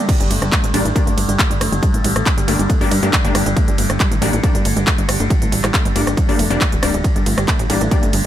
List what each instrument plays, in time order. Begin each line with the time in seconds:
0.09 synth drone G2 D3, synth arpeggio sound G3, kick, closed hi-hat, ride, crash
0.20 analog synth bass G1, synth arpeggio sound G3, closed hi-hat
0.30 analog synth bass G1, synth arpeggio sound A3, open hi-hat, ride
0.42 analog synth bass G1, synth arpeggio sound G3, cross-stick, closed hi-hat
0.52 synth arpeggio sound A3, kick, clap, closed hi-hat, ride
0.63 analog synth bass A1, synth arpeggio sound G3, closed hi-hat
0.74 analog synth bass A1, synth stab G3 A#3 D4, synth arpeggio sound G3, open hi-hat, ride
0.85 analog synth bass A1, synth arpeggio sound A3, closed hi-hat
0.95 synth arpeggio sound G3, synth stab G3 A#3 D4, kick, closed hi-hat, ride
1.07 analog synth bass G1, synth arpeggio sound A3, closed hi-hat
1.17 analog synth bass G1, synth arpeggio sound G3, open hi-hat, ride
1.29 analog synth bass G1, synth arpeggio sound G3, closed hi-hat
1.39 synth arpeggio sound A3, kick, clap, closed hi-hat, ride
1.50 analog synth bass G1, synth arpeggio sound G3, closed hi-hat
1.61 analog synth bass G1, synth arpeggio sound A3, cross-stick, open hi-hat, ride
1.72 analog synth bass G1, synth arpeggio sound G3, closed hi-hat
1.83 synth arpeggio sound G3, kick, closed hi-hat, ride
1.94 analog synth bass A1, synth arpeggio sound A3, closed hi-hat
2.04 analog synth bass A1, synth arpeggio sound G3, open hi-hat, ride
2.16 analog synth bass A1, synth arpeggio sound A3, cross-stick, closed hi-hat
2.26 synth arpeggio sound G3, kick, clap, closed hi-hat, ride
2.37 analog synth bass G1, synth arpeggio sound G3, closed hi-hat
2.48 analog synth bass G1, synth stab G3 A#3 D4, synth arpeggio sound A3, open hi-hat, ride
2.59 analog synth bass G1, synth arpeggio sound G3, closed hi-hat
2.70 synth arpeggio sound A3, kick, closed hi-hat, ride
2.81 analog synth bass G2, synth stab G3 A#3 D4, synth arpeggio sound G3, open hi-hat
2.91 analog synth bass G2, synth arpeggio sound G3, open hi-hat, ride
3.03 analog synth bass G2, synth stab G3 A#3 D4, synth arpeggio sound A3, closed hi-hat
3.13 synth arpeggio sound G3, kick, clap, closed hi-hat, ride
3.24 analog synth bass G1, synth stab G3 A#3 D4, synth arpeggio sound A3, closed hi-hat
3.35 analog synth bass G1, synth arpeggio sound G3, cross-stick, open hi-hat, ride
3.46 analog synth bass G1, synth arpeggio sound G3, closed hi-hat
3.56 synth arpeggio sound A3, kick, closed hi-hat, ride
3.68 analog synth bass G1, synth arpeggio sound G3, closed hi-hat
3.78 analog synth bass G1, synth arpeggio sound A3, open hi-hat, ride
3.90 analog synth bass G1, synth arpeggio sound G3, cross-stick, closed hi-hat
4.00 synth arpeggio sound G3, kick, clap, closed hi-hat, ride
4.11 analog synth bass A1, synth arpeggio sound A3, closed hi-hat
4.22 analog synth bass A1, synth stab G3 A#3 D4, synth arpeggio sound G3, open hi-hat, ride
4.33 analog synth bass A1, synth arpeggio sound A3, closed hi-hat
4.43 synth arpeggio sound G3, synth stab G3 A#3 D4, kick, closed hi-hat, ride
4.55 analog synth bass G1, synth arpeggio sound G3, closed hi-hat
4.65 analog synth bass G1, synth arpeggio sound A3, open hi-hat, ride
4.76 analog synth bass G1, synth arpeggio sound G3, closed hi-hat
4.87 synth arpeggio sound A3, kick, clap, closed hi-hat, ride
4.98 analog synth bass G1, synth arpeggio sound G3, closed hi-hat
5.09 analog synth bass G1, synth arpeggio sound G3, cross-stick, open hi-hat, ride
5.20 analog synth bass G1, synth arpeggio sound A3, closed hi-hat
5.30 synth arpeggio sound G3, kick, closed hi-hat, ride
5.42 analog synth bass A1, synth arpeggio sound A3, closed hi-hat
5.52 analog synth bass A1, synth arpeggio sound G3, open hi-hat, ride
5.63 analog synth bass A1, synth arpeggio sound G3, cross-stick, clap, closed hi-hat
5.74 synth arpeggio sound A3, kick, clap, closed hi-hat, ride
5.85 analog synth bass G1, synth arpeggio sound G3, closed hi-hat
5.96 analog synth bass G1, synth stab G3 A#3 D4, synth arpeggio sound A3, open hi-hat, ride
6.07 analog synth bass G1, synth arpeggio sound G3, cross-stick, closed hi-hat
6.17 synth arpeggio sound G3, kick, closed hi-hat, ride
6.29 analog synth bass G2, synth stab G3 A#3 D4, synth arpeggio sound A3, open hi-hat
6.39 analog synth bass F1, synth arpeggio sound A3, open hi-hat, ride
6.50 analog synth bass F1, synth arpeggio sound F3, synth stab G3 A#3 D4, closed hi-hat
6.61 synth arpeggio sound G3, kick, clap, closed hi-hat, ride
6.72 analog synth bass D1, synth arpeggio sound G3, closed hi-hat
6.82 analog synth bass D1, synth stab G3 A#3 D4, synth arpeggio sound G3, cross-stick, open hi-hat, ride
6.94 analog synth bass D1, synth arpeggio sound G3, closed hi-hat
7.04 synth arpeggio sound G3, kick, closed hi-hat, ride
7.16 analog synth bass G1, synth arpeggio sound G3, closed hi-hat
7.26 analog synth bass G1, synth arpeggio sound A3, open hi-hat, ride
7.38 analog synth bass G1, synth arpeggio sound G3, cross-stick, closed hi-hat
7.48 synth arpeggio sound A3, kick, clap, closed hi-hat, ride
7.59 analog synth bass A1, synth arpeggio sound G3, closed hi-hat
7.70 analog synth bass A1, synth stab G3 A#3 D4, synth arpeggio sound G3, open hi-hat, ride
7.81 analog synth bass A1, synth arpeggio sound A3, closed hi-hat
7.91 synth stab G3 A#3 D4, synth arpeggio sound G3, kick, closed hi-hat, ride
8.03 analog synth bass G1, synth arpeggio sound A3, closed hi-hat
8.13 analog synth bass G1, synth arpeggio sound G3, open hi-hat, ride